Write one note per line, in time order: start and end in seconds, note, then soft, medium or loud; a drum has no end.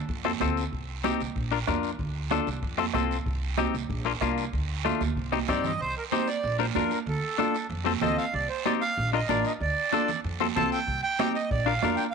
0.09 0.34 F2 medium
0.09 bombo low medium
0.09 long guiro medium
0.25 0.30 C4 medium
0.25 0.30 F4 medium
0.25 0.31 A4 medium
0.25 bombo rim medium
0.25 high conga medium
0.40 0.66 D2 medium
0.40 0.63 C4 medium
0.40 0.63 F4 medium
0.40 0.63 A4 medium
0.40 bombo low medium
0.40 bombo rim medium
0.40 high conga medium
0.40 short guiro medium
0.57 short guiro medium
0.72 1.11 C2 medium
0.72 bombo low medium
0.72 long guiro medium
1.04 1.21 C4 medium
1.04 1.21 D#4 medium
1.04 1.21 G4 medium
1.04 bombo rim medium
1.04 high conga medium
1.04 short guiro medium
1.20 1.33 C2 medium
1.20 short guiro medium
1.36 1.61 A#1 medium
1.36 bombo low medium
1.36 long guiro medium
1.51 1.57 D4 medium
1.51 1.57 F4 medium
1.51 1.58 A#4 medium
1.67 1.93 F2 medium
1.67 1.90 D4 medium
1.67 1.90 F4 medium
1.67 1.90 A#4 medium
1.67 bombo low medium
1.67 bombo rim medium
1.67 high conga medium
1.67 short guiro medium
1.83 short guiro medium
1.99 2.37 D2 medium
1.99 bombo low medium
1.99 long guiro medium
2.31 2.48 D4 medium
2.31 2.48 F4 medium
2.31 2.48 A4 medium
2.31 bombo rim medium
2.31 high conga medium
2.31 short guiro medium
2.47 2.60 C2 medium
2.47 short guiro medium
2.62 2.88 F2 medium
2.62 bombo low medium
2.62 long guiro medium
2.78 2.84 C4 medium
2.78 2.84 F4 medium
2.78 2.85 A4 medium
2.78 bombo rim medium
2.78 high conga medium
2.94 3.20 C2 medium
2.94 3.17 C4 medium
2.94 3.17 F4 medium
2.94 3.17 A4 medium
2.94 bombo low medium
2.94 bombo rim medium
2.94 high conga medium
2.94 short guiro medium
3.11 short guiro medium
3.26 3.64 C2 medium
3.26 bombo low medium
3.26 long guiro medium
3.58 3.75 C4 medium
3.58 3.75 D#4 medium
3.58 3.75 G4 medium
3.58 bombo rim medium
3.58 high conga medium
3.58 short guiro medium
3.74 3.86 C2 medium
3.74 short guiro medium
3.89 4.15 A#1 loud
3.89 bombo low medium
3.89 long guiro medium
4.05 4.11 A#3 medium
4.05 4.11 D4 medium
4.05 4.11 F4 medium
4.21 4.47 C2 medium
4.21 4.44 A#3 medium
4.21 4.44 D4 medium
4.21 4.44 F4 medium
4.21 bombo low medium
4.21 bombo rim medium
4.21 high conga medium
4.21 short guiro medium
4.38 short guiro medium
4.53 4.91 D2 medium
4.53 bombo low medium
4.53 long guiro medium
4.85 5.02 A3 medium
4.85 5.02 D4 medium
4.85 5.02 F4 medium
4.85 bombo rim medium
4.85 high conga medium
4.85 short guiro medium
5.01 5.13 D2 medium
5.01 high conga medium
5.01 short guiro medium
5.16 5.42 C2 medium
5.16 bombo low medium
5.16 long guiro medium
5.32 5.38 C4 medium
5.32 5.38 D#4 medium
5.32 5.38 G4 medium
5.32 bombo rim medium
5.32 high conga medium
5.48 5.74 G2 medium
5.48 5.71 C4 medium
5.48 5.71 D#4 medium
5.48 5.71 G4 medium
5.48 5.64 D5 medium
5.48 bombo low medium
5.48 bombo rim medium
5.48 low conga medium
5.48 short guiro medium
5.64 5.81 D#5 medium
5.64 low conga medium
5.64 short guiro medium
5.80 5.93 C2 medium
5.80 5.95 C5 loud
5.80 long guiro medium
5.97 6.04 A#4 medium
6.12 6.29 C4 medium
6.12 6.29 D#4 medium
6.12 6.29 G4 medium
6.12 6.28 C5 medium
6.12 high conga medium
6.12 short guiro medium
6.28 6.57 D5 medium
6.28 short guiro medium
6.43 6.69 A#1 loud
6.43 long guiro medium
6.59 6.65 D4 medium
6.59 6.65 F4 medium
6.59 6.65 A#4 medium
6.59 6.66 C5 medium
6.59 high conga medium
6.75 6.88 F2 loud
6.75 6.98 D4 medium
6.75 6.98 F4 medium
6.75 6.98 A#4 medium
6.75 6.91 A#4 medium
6.75 high conga medium
6.75 short guiro medium
6.91 6.99 A#4 medium
6.91 short guiro medium
7.06 7.19 D2 loud
7.06 7.67 A4 medium
7.06 long guiro medium
7.38 7.55 D4 medium
7.38 7.55 F4 medium
7.38 7.56 A4 medium
7.38 high conga medium
7.38 short guiro medium
7.55 short guiro medium
7.70 7.95 F2 loud
7.70 long guiro medium
7.86 7.91 C4 medium
7.86 7.92 F4 medium
7.86 7.92 A4 medium
7.86 high conga medium
8.01 8.15 D2 medium
8.01 8.24 C4 medium
8.01 8.24 F4 medium
8.01 8.24 A4 medium
8.01 8.17 D#5 medium
8.01 high conga medium
8.01 low conga medium
8.01 short guiro medium
8.18 8.34 F5 medium
8.18 short guiro medium
8.33 8.46 C2 medium
8.33 8.48 D5 medium
8.33 long guiro medium
8.49 8.64 C5 medium
8.65 8.82 C4 medium
8.65 8.82 D#4 medium
8.65 8.82 G4 medium
8.65 8.72 D5 medium
8.65 high conga medium
8.65 short guiro medium
8.81 9.11 F5 loud
8.81 short guiro medium
8.97 9.23 A#1 loud
8.97 long guiro medium
9.13 9.19 D4 medium
9.13 9.19 F4 medium
9.13 9.19 A#4 medium
9.13 9.29 D#5 medium
9.29 9.42 A1 medium
9.29 9.51 D4 medium
9.29 9.51 F4 medium
9.29 9.52 A#4 medium
9.29 9.45 D5 medium
9.29 high conga medium
9.29 short guiro medium
9.45 9.53 D#5 medium
9.45 short guiro medium
9.60 9.73 D2 medium
9.60 10.20 D5 medium
9.60 long guiro medium
9.93 10.09 D4 medium
9.93 10.09 F4 medium
9.93 10.10 A4 medium
9.93 high conga medium
9.93 short guiro medium
10.08 low conga medium
10.08 short guiro medium
10.24 10.50 F2 loud
10.24 long guiro medium
10.40 10.46 C4 medium
10.40 10.46 F4 medium
10.40 10.46 A4 medium
10.40 high conga medium
10.56 10.69 C2 medium
10.56 10.78 C4 medium
10.56 10.78 F4 medium
10.56 10.78 A4 medium
10.56 10.70 A5 medium
10.56 high conga medium
10.56 low conga medium
10.56 short guiro medium
10.72 11.01 G5 medium
10.72 short guiro medium
10.87 11.00 C2 medium
10.87 bombo low medium
10.87 long guiro medium
11.03 11.33 G5 loud
11.19 11.36 C4 medium
11.19 11.36 D#4 medium
11.19 11.36 G4 medium
11.19 bombo rim medium
11.19 high conga medium
11.19 short guiro medium
11.35 11.50 D#5 medium
11.35 short guiro medium
11.51 11.76 A#1 loud
11.51 11.67 D5 medium
11.51 bombo low medium
11.51 long guiro medium
11.66 11.72 D4 medium
11.66 11.72 F4 medium
11.66 11.73 A#4 medium
11.66 11.96 F5 medium
11.82 11.96 F2 medium
11.82 12.05 D4 medium
11.82 12.05 F4 medium
11.82 12.06 A#4 medium
11.82 bombo rim medium
11.82 high conga medium
11.82 short guiro medium
11.96 12.04 G5 medium
11.96 short guiro medium
12.11 12.14 F5 loud